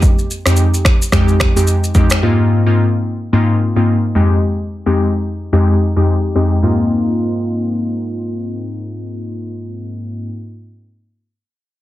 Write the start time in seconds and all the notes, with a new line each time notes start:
0.02 kick, shaker
0.19 shaker
0.31 shaker
0.46 F2 G#3 C4 D#4 G4, finger snap, cross-stick, shaker
0.56 shaker
0.74 shaker
0.85 finger snap, kick, cross-stick, shaker
1.02 shaker
1.12 F2 G#3 C4 D#4 G4, finger snap, kick, cross-stick, shaker
1.28 shaker
1.40 finger snap, kick, cross-stick, shaker
1.56 F2 G#3 C4 D#4 G4, shaker
1.67 shaker
1.84 shaker
1.95 F2 G#3 C4 D#4 G4, kick, shaker
2.10 finger snap, cross-stick, shaker
2.23 G#2 A#3 C4 D#4 F4
2.66 G#2 A#3 C4 D#4 F4
3.33 G#2 A#3 C4 D#4 F4
3.76 G#2 A#3 C4 D#4 F4
4.15 F2 G#3 C4 D#4 G4
4.86 F2 G#3 C4 D#4 G4
5.53 F2 G#3 C4 D#4 G4
5.96 F2 G#3 C4 D#4 G4
6.35 F2 G#3 C4 D#4 G4
6.63 G#2 A#3 C4 D#4 F4